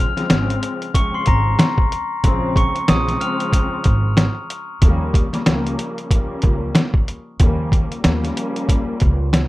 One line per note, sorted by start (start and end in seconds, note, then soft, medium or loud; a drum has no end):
0.00 0.13 C#3 medium
0.00 0.13 F3 medium
0.00 0.14 G#3 medium
0.00 0.14 C4 loud
0.00 0.91 F6 loud
0.00 0.91 F7 medium
0.16 0.29 C#3 medium
0.16 0.29 F3 medium
0.16 0.29 G#3 medium
0.16 0.29 C4 loud
0.16 snare soft
0.16 closed hi-hat soft
0.30 0.56 G#1 medium
0.30 0.90 C#3 loud
0.30 0.91 F3 medium
0.30 0.91 G#3 medium
0.30 0.91 C4 loud
0.30 snare loud
0.30 snare medium
0.30 closed hi-hat medium
0.50 closed hi-hat soft
0.63 closed hi-hat medium
0.82 closed hi-hat soft
0.94 1.85 C#3 medium
0.94 1.85 F3 medium
0.94 1.86 G#3 medium
0.94 1.86 C4 loud
0.94 1.12 C#6 medium
0.94 1.13 C#7 medium
0.94 kick medium
0.94 closed hi-hat loud
1.14 1.26 C6 medium
1.14 1.26 C7 medium
1.26 1.53 G#1 medium
1.26 2.20 A#5 medium
1.26 2.20 A#6 medium
1.26 kick loud
1.26 closed hi-hat medium
1.59 snare loud
1.59 snare medium
1.59 closed hi-hat medium
1.78 kick loud
1.92 closed hi-hat medium
2.24 2.65 A#1 loud
2.24 2.85 C#3 loud
2.24 2.85 F3 medium
2.24 2.85 G#3 medium
2.24 2.85 C4 loud
2.24 kick loud
2.24 closed hi-hat loud
2.56 2.85 C#6 medium
2.56 2.86 C#7 medium
2.56 kick medium
2.56 closed hi-hat medium
2.76 closed hi-hat soft
2.88 3.14 A#1 loud
2.88 4.39 C#3 loud
2.88 4.39 F3 loud
2.88 4.39 G#3 loud
2.88 4.39 C4 loud
2.88 3.17 D#6 medium
2.88 3.18 D#7 medium
2.88 snare loud
2.88 snare medium
2.88 closed hi-hat medium
3.08 snare soft
3.08 closed hi-hat soft
3.21 4.78 F6 medium
3.21 4.78 F7 medium
3.21 closed hi-hat medium
3.40 closed hi-hat medium
3.53 kick medium
3.53 closed hi-hat loud
3.84 4.26 G#1 loud
3.84 kick loud
3.84 closed hi-hat medium
4.17 snare loud
4.17 snare medium
4.17 closed hi-hat medium
4.50 closed hi-hat medium
4.82 5.23 D#2 loud
4.82 5.29 C#3 loud
4.82 5.30 F3 medium
4.82 5.30 G3 medium
4.82 5.30 A#3 loud
4.82 kick loud
4.82 closed hi-hat loud
5.14 kick medium
5.14 closed hi-hat medium
5.32 5.43 C#3 loud
5.32 5.44 F3 medium
5.32 5.44 G3 medium
5.32 5.44 A#3 loud
5.32 snare soft
5.32 closed hi-hat soft
5.45 5.72 C#2 medium
5.45 6.06 C#3 loud
5.45 6.06 F3 medium
5.45 6.06 G3 medium
5.45 6.06 A#3 loud
5.45 snare loud
5.45 snare medium
5.45 closed hi-hat loud
5.67 closed hi-hat soft
5.79 closed hi-hat medium
5.98 closed hi-hat soft
6.11 7.02 C#3 medium
6.11 7.02 F3 medium
6.11 7.02 G3 medium
6.11 7.02 A#3 loud
6.11 kick medium
6.11 closed hi-hat loud
6.42 6.69 C#2 loud
6.42 kick loud
6.42 closed hi-hat medium
6.75 snare loud
6.75 snare medium
6.75 closed hi-hat medium
6.94 kick loud
7.08 closed hi-hat medium
7.40 7.81 D#2 loud
7.40 8.01 C#3 loud
7.40 8.01 F3 medium
7.40 8.01 G3 medium
7.40 8.01 A#3 loud
7.40 kick loud
7.40 closed hi-hat loud
7.72 kick medium
7.72 closed hi-hat medium
7.92 closed hi-hat soft
8.04 8.30 D#2 medium
8.04 9.48 C#3 loud
8.04 9.48 F3 loud
8.04 9.48 G3 loud
8.04 9.48 A#3 loud
8.04 snare loud
8.04 snare medium
8.04 closed hi-hat medium
8.24 snare soft
8.24 closed hi-hat soft
8.37 closed hi-hat medium
8.56 closed hi-hat soft
8.69 kick medium
8.69 closed hi-hat loud
9.00 9.42 C#2 loud
9.00 kick loud
9.00 closed hi-hat medium
9.33 snare loud
9.33 snare medium
9.33 closed hi-hat medium